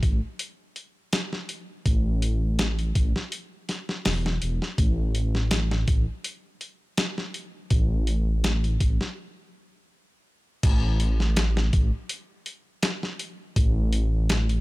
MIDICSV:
0, 0, Header, 1, 3, 480
1, 0, Start_track
1, 0, Tempo, 731707
1, 1217, Time_signature, 4, 2, 24, 8
1, 9583, End_track
2, 0, Start_track
2, 0, Title_t, "Detuned saw bass"
2, 0, Program_c, 0, 39
2, 20, Note_on_c, 0, 33, 72
2, 133, Note_off_c, 0, 33, 0
2, 1220, Note_on_c, 0, 33, 93
2, 1918, Note_off_c, 0, 33, 0
2, 1940, Note_on_c, 0, 33, 76
2, 2053, Note_off_c, 0, 33, 0
2, 2664, Note_on_c, 0, 28, 92
2, 2874, Note_off_c, 0, 28, 0
2, 2904, Note_on_c, 0, 28, 86
2, 3015, Note_off_c, 0, 28, 0
2, 3141, Note_on_c, 0, 33, 100
2, 3838, Note_off_c, 0, 33, 0
2, 3859, Note_on_c, 0, 33, 70
2, 3973, Note_off_c, 0, 33, 0
2, 5059, Note_on_c, 0, 33, 97
2, 5757, Note_off_c, 0, 33, 0
2, 5780, Note_on_c, 0, 33, 70
2, 5893, Note_off_c, 0, 33, 0
2, 6978, Note_on_c, 0, 33, 100
2, 7677, Note_off_c, 0, 33, 0
2, 7699, Note_on_c, 0, 33, 77
2, 7813, Note_off_c, 0, 33, 0
2, 8900, Note_on_c, 0, 33, 100
2, 9583, Note_off_c, 0, 33, 0
2, 9583, End_track
3, 0, Start_track
3, 0, Title_t, "Drums"
3, 17, Note_on_c, 9, 36, 88
3, 19, Note_on_c, 9, 42, 59
3, 83, Note_off_c, 9, 36, 0
3, 84, Note_off_c, 9, 42, 0
3, 258, Note_on_c, 9, 42, 84
3, 324, Note_off_c, 9, 42, 0
3, 498, Note_on_c, 9, 42, 62
3, 564, Note_off_c, 9, 42, 0
3, 739, Note_on_c, 9, 42, 88
3, 741, Note_on_c, 9, 38, 110
3, 804, Note_off_c, 9, 42, 0
3, 807, Note_off_c, 9, 38, 0
3, 871, Note_on_c, 9, 38, 36
3, 936, Note_off_c, 9, 38, 0
3, 977, Note_on_c, 9, 42, 63
3, 1042, Note_off_c, 9, 42, 0
3, 1217, Note_on_c, 9, 36, 97
3, 1217, Note_on_c, 9, 42, 83
3, 1283, Note_off_c, 9, 36, 0
3, 1283, Note_off_c, 9, 42, 0
3, 1458, Note_on_c, 9, 42, 69
3, 1524, Note_off_c, 9, 42, 0
3, 1697, Note_on_c, 9, 42, 85
3, 1700, Note_on_c, 9, 38, 103
3, 1763, Note_off_c, 9, 42, 0
3, 1766, Note_off_c, 9, 38, 0
3, 1828, Note_on_c, 9, 42, 43
3, 1894, Note_off_c, 9, 42, 0
3, 1938, Note_on_c, 9, 36, 86
3, 1938, Note_on_c, 9, 42, 68
3, 2003, Note_off_c, 9, 36, 0
3, 2003, Note_off_c, 9, 42, 0
3, 2072, Note_on_c, 9, 38, 41
3, 2137, Note_off_c, 9, 38, 0
3, 2178, Note_on_c, 9, 42, 83
3, 2243, Note_off_c, 9, 42, 0
3, 2419, Note_on_c, 9, 42, 65
3, 2421, Note_on_c, 9, 38, 39
3, 2484, Note_off_c, 9, 42, 0
3, 2487, Note_off_c, 9, 38, 0
3, 2552, Note_on_c, 9, 38, 39
3, 2618, Note_off_c, 9, 38, 0
3, 2658, Note_on_c, 9, 46, 80
3, 2660, Note_on_c, 9, 38, 109
3, 2723, Note_off_c, 9, 46, 0
3, 2726, Note_off_c, 9, 38, 0
3, 2794, Note_on_c, 9, 38, 52
3, 2860, Note_off_c, 9, 38, 0
3, 2897, Note_on_c, 9, 42, 60
3, 2963, Note_off_c, 9, 42, 0
3, 3031, Note_on_c, 9, 38, 41
3, 3097, Note_off_c, 9, 38, 0
3, 3137, Note_on_c, 9, 36, 96
3, 3137, Note_on_c, 9, 42, 82
3, 3202, Note_off_c, 9, 36, 0
3, 3203, Note_off_c, 9, 42, 0
3, 3376, Note_on_c, 9, 42, 68
3, 3442, Note_off_c, 9, 42, 0
3, 3509, Note_on_c, 9, 38, 38
3, 3574, Note_off_c, 9, 38, 0
3, 3613, Note_on_c, 9, 42, 84
3, 3616, Note_on_c, 9, 38, 116
3, 3679, Note_off_c, 9, 42, 0
3, 3682, Note_off_c, 9, 38, 0
3, 3749, Note_on_c, 9, 38, 53
3, 3814, Note_off_c, 9, 38, 0
3, 3855, Note_on_c, 9, 42, 69
3, 3856, Note_on_c, 9, 36, 96
3, 3920, Note_off_c, 9, 42, 0
3, 3921, Note_off_c, 9, 36, 0
3, 4096, Note_on_c, 9, 42, 81
3, 4162, Note_off_c, 9, 42, 0
3, 4335, Note_on_c, 9, 42, 65
3, 4401, Note_off_c, 9, 42, 0
3, 4575, Note_on_c, 9, 42, 92
3, 4578, Note_on_c, 9, 38, 115
3, 4641, Note_off_c, 9, 42, 0
3, 4643, Note_off_c, 9, 38, 0
3, 4709, Note_on_c, 9, 38, 36
3, 4775, Note_off_c, 9, 38, 0
3, 4817, Note_on_c, 9, 42, 67
3, 4882, Note_off_c, 9, 42, 0
3, 5054, Note_on_c, 9, 42, 83
3, 5056, Note_on_c, 9, 36, 103
3, 5119, Note_off_c, 9, 42, 0
3, 5121, Note_off_c, 9, 36, 0
3, 5295, Note_on_c, 9, 42, 67
3, 5361, Note_off_c, 9, 42, 0
3, 5536, Note_on_c, 9, 42, 85
3, 5539, Note_on_c, 9, 38, 105
3, 5602, Note_off_c, 9, 42, 0
3, 5605, Note_off_c, 9, 38, 0
3, 5668, Note_on_c, 9, 42, 44
3, 5734, Note_off_c, 9, 42, 0
3, 5776, Note_on_c, 9, 36, 87
3, 5776, Note_on_c, 9, 42, 62
3, 5841, Note_off_c, 9, 36, 0
3, 5842, Note_off_c, 9, 42, 0
3, 5909, Note_on_c, 9, 38, 42
3, 5975, Note_off_c, 9, 38, 0
3, 6975, Note_on_c, 9, 42, 91
3, 6975, Note_on_c, 9, 49, 92
3, 6976, Note_on_c, 9, 36, 110
3, 7041, Note_off_c, 9, 36, 0
3, 7041, Note_off_c, 9, 42, 0
3, 7041, Note_off_c, 9, 49, 0
3, 7215, Note_on_c, 9, 42, 67
3, 7280, Note_off_c, 9, 42, 0
3, 7348, Note_on_c, 9, 38, 40
3, 7414, Note_off_c, 9, 38, 0
3, 7455, Note_on_c, 9, 42, 91
3, 7458, Note_on_c, 9, 38, 113
3, 7521, Note_off_c, 9, 42, 0
3, 7523, Note_off_c, 9, 38, 0
3, 7589, Note_on_c, 9, 38, 52
3, 7655, Note_off_c, 9, 38, 0
3, 7694, Note_on_c, 9, 42, 66
3, 7696, Note_on_c, 9, 36, 95
3, 7760, Note_off_c, 9, 42, 0
3, 7761, Note_off_c, 9, 36, 0
3, 7934, Note_on_c, 9, 42, 84
3, 7999, Note_off_c, 9, 42, 0
3, 8174, Note_on_c, 9, 42, 64
3, 8239, Note_off_c, 9, 42, 0
3, 8413, Note_on_c, 9, 42, 92
3, 8416, Note_on_c, 9, 38, 112
3, 8479, Note_off_c, 9, 42, 0
3, 8482, Note_off_c, 9, 38, 0
3, 8549, Note_on_c, 9, 38, 38
3, 8614, Note_off_c, 9, 38, 0
3, 8656, Note_on_c, 9, 42, 64
3, 8721, Note_off_c, 9, 42, 0
3, 8897, Note_on_c, 9, 36, 105
3, 8897, Note_on_c, 9, 42, 90
3, 8962, Note_off_c, 9, 36, 0
3, 8962, Note_off_c, 9, 42, 0
3, 9135, Note_on_c, 9, 42, 71
3, 9201, Note_off_c, 9, 42, 0
3, 9377, Note_on_c, 9, 42, 90
3, 9380, Note_on_c, 9, 38, 122
3, 9443, Note_off_c, 9, 42, 0
3, 9445, Note_off_c, 9, 38, 0
3, 9508, Note_on_c, 9, 42, 41
3, 9574, Note_off_c, 9, 42, 0
3, 9583, End_track
0, 0, End_of_file